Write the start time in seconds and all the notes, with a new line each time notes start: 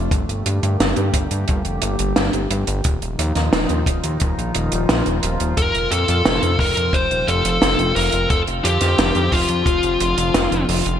Already playing: A3
0.11 G1 D3 G3 A#3 G4, kick, closed hi-hat
0.29 G1, closed hi-hat
0.46 G2, closed hi-hat
0.63 G2, closed hi-hat
0.80 G1, snare, closed hi-hat
0.96 G2, closed hi-hat
1.14 G1, kick, closed hi-hat
1.31 G2, closed hi-hat
1.48 G1, kick, closed hi-hat
1.65 F1, closed hi-hat
1.82 G1, closed hi-hat
1.99 G1, closed hi-hat
2.16 G1, snare, closed hi-hat
2.33 G1, closed hi-hat
2.50 G1, closed hi-hat
2.67 G1, closed hi-hat
2.84 D#1 A#2 D#3 F3 D#4 F4, kick, closed hi-hat
3.02 D#1, closed hi-hat
3.19 D#2, closed hi-hat
3.35 D#2, snare, closed hi-hat
3.53 D#1, snare, closed hi-hat
3.69 D#2, closed hi-hat
3.86 D#1, kick, closed hi-hat
4.04 D#2, closed hi-hat
4.20 D#1, kick, closed hi-hat
4.38 A#1, closed hi-hat
4.55 D#1, closed hi-hat
4.72 D#1, closed hi-hat
4.89 A#1, snare, closed hi-hat
5.06 D#1, closed hi-hat
5.23 D#1, closed hi-hat
5.40 D#1, closed hi-hat
5.57 F1 C3 C4 A#4, kick, closed hi-hat
5.74 F1, closed hi-hat
5.91 F2 A4, closed hi-hat
6.08 F2, closed hi-hat
6.25 F1, snare, closed hi-hat
6.43 F2, closed hi-hat
6.59 F1 A#4, kick, open hi-hat
6.77 F2, closed hi-hat
6.93 F1 C5, kick, closed hi-hat
7.11 D#1, closed hi-hat
7.28 F1 A4, closed hi-hat
7.45 F1, closed hi-hat
7.62 F1, snare, closed hi-hat
7.79 F1, closed hi-hat
7.96 F1 A#4, open hi-hat
8.12 F1, closed hi-hat
8.30 F1 D3 F3 A4, kick, closed hi-hat
8.47 F1, closed hi-hat
8.64 F2 G4, closed hi-hat
8.81 F2, snare, closed hi-hat
8.98 F1, snare, closed hi-hat
9.15 F2, closed hi-hat
9.32 F1 F4, kick, open hi-hat
9.49 F2, closed hi-hat
9.66 F1, kick, closed hi-hat
9.83 F1, closed hi-hat
10.00 F1, closed hi-hat
10.18 F1, closed hi-hat
10.34 F1, snare, closed hi-hat
10.52 F1, closed hi-hat
10.69 F1, open hi-hat
10.86 F1, closed hi-hat